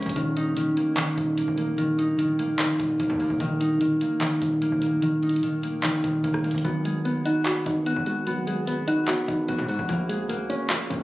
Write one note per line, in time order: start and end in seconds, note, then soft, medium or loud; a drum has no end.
0.00 0.16 G#3 medium
0.00 0.16 A#3 medium
0.00 0.76 A#3 medium
0.00 0.16 C#4 medium
0.00 2.85 C#4 medium
0.00 0.16 F4 medium
0.00 1.01 G#4 medium
0.00 closed hi-hat medium
0.06 0.15 A#1 loud
0.06 closed hi-hat medium
0.16 0.74 D#1 loud
0.16 0.56 D#3 medium
0.16 closed hi-hat medium
0.37 1.98 D#4 medium
0.37 closed hi-hat medium
0.57 0.96 D#3 medium
0.57 closed hi-hat medium
0.77 1.37 A#3 medium
0.77 closed hi-hat medium
0.97 1.77 D#3 loud
0.97 clap loud
0.97 closed hi-hat medium
1.17 1.46 D#1 loud
1.17 closed hi-hat medium
1.38 1.57 A#3 medium
1.38 closed hi-hat loud
1.48 2.65 D#1 loud
1.58 2.39 A#3 medium
1.58 closed hi-hat medium
1.78 2.17 D#3 loud
1.78 closed hi-hat medium
1.98 3.60 D#4 medium
1.98 closed hi-hat medium
2.18 2.58 D#3 medium
2.18 closed hi-hat medium
2.39 3.00 A#3 medium
2.39 closed hi-hat medium
2.59 3.39 D#3 medium
2.59 clap loud
2.59 closed hi-hat medium
2.79 2.99 D#1 loud
2.79 closed hi-hat medium
3.00 3.09 D#1 loud
3.00 3.20 A#3 medium
3.00 closed hi-hat loud
3.10 3.29 D#2 loud
3.20 4.01 A#3 medium
3.20 open hi-hat medium
3.30 3.39 D#1 loud
3.40 3.99 D#1 loud
3.40 3.79 D#3 loud
3.40 closed hi-hat medium
3.60 5.23 D#4 medium
3.60 closed hi-hat medium
3.81 4.20 D#3 medium
3.81 closed hi-hat medium
4.01 4.61 A#3 medium
4.01 closed hi-hat medium
4.21 5.01 D#3 loud
4.21 clap loud
4.21 closed hi-hat medium
4.42 4.71 D#1 loud
4.42 closed hi-hat medium
4.62 4.82 A#3 medium
4.62 closed hi-hat loud
4.72 5.90 D#1 loud
4.82 5.63 A#3 medium
4.82 closed hi-hat medium
5.02 5.42 D#3 loud
5.02 closed hi-hat medium
5.23 7.93 D#4 medium
5.23 closed hi-hat medium
5.29 closed hi-hat medium
5.36 closed hi-hat medium
5.43 5.82 D#3 medium
5.43 closed hi-hat medium
5.63 6.23 A#3 medium
5.63 closed hi-hat medium
5.83 6.70 D#3 medium
5.83 clap loud
5.83 closed hi-hat medium
6.04 6.23 D#1 loud
6.04 closed hi-hat medium
6.24 6.34 D#1 loud
6.24 6.44 A#3 medium
6.24 closed hi-hat loud
6.34 6.54 D#1 loud
6.34 cross-stick medium
6.44 6.70 A#3 medium
6.44 closed hi-hat soft
6.51 6.64 D#1 loud
6.51 closed hi-hat medium
6.58 closed hi-hat medium
6.64 7.23 G#1 loud
6.64 7.66 F#3 medium
6.64 7.04 B3 medium
6.64 closed hi-hat medium
6.85 7.86 G#3 medium
6.85 8.47 G#4 medium
6.85 closed hi-hat medium
7.05 7.45 B3 medium
7.05 7.85 B3 medium
7.05 closed hi-hat medium
7.25 7.65 D#4 loud
7.25 7.86 F#4 medium
7.25 closed hi-hat medium
7.46 8.26 B3 medium
7.46 8.47 F#4 medium
7.46 clap loud
7.46 closed hi-hat medium
7.66 7.95 G#1 loud
7.66 8.67 D#4 medium
7.66 closed hi-hat medium
7.86 8.66 B3 loud
7.86 8.06 F#4 medium
7.86 closed hi-hat medium
7.96 9.14 G#1 loud
8.06 8.46 G#3 medium
8.06 8.87 F#4 medium
8.06 closed hi-hat medium
8.27 9.28 F#3 medium
8.27 8.67 B3 medium
8.27 closed hi-hat medium
8.47 9.48 G#3 medium
8.47 10.09 G#4 medium
8.47 closed hi-hat medium
8.67 9.07 B3 medium
8.67 9.47 B3 medium
8.67 closed hi-hat medium
8.88 9.27 D#4 loud
8.88 9.48 F#4 medium
8.88 closed hi-hat medium
9.08 9.95 B3 medium
9.08 9.89 F#4 medium
9.08 clap loud
9.08 closed hi-hat medium
9.28 9.48 G#1 loud
9.28 9.89 D#4 medium
9.28 closed hi-hat medium
9.48 9.58 G#1 loud
9.48 9.89 B3 medium
9.48 9.68 F#4 medium
9.48 closed hi-hat loud
9.59 9.78 G#2 loud
9.68 9.89 G#3 medium
9.68 11.03 F#4 medium
9.68 open hi-hat medium
9.79 9.89 G#1 loud
9.89 10.47 A#1 loud
9.89 10.90 F3 medium
9.89 10.29 A#3 loud
9.89 closed hi-hat medium
10.09 11.03 G#3 medium
10.09 11.03 G#4 medium
10.09 closed hi-hat medium
10.29 10.70 A#3 medium
10.29 11.03 A#3 medium
10.29 closed hi-hat medium
10.50 10.89 C#4 loud
10.50 11.03 C#4 medium
10.50 closed hi-hat medium
10.70 11.03 A#3 loud
10.70 11.03 F4 medium
10.70 clap loud
10.70 closed hi-hat medium
10.90 11.03 A#1 loud
10.90 11.03 C#4 medium
10.90 closed hi-hat medium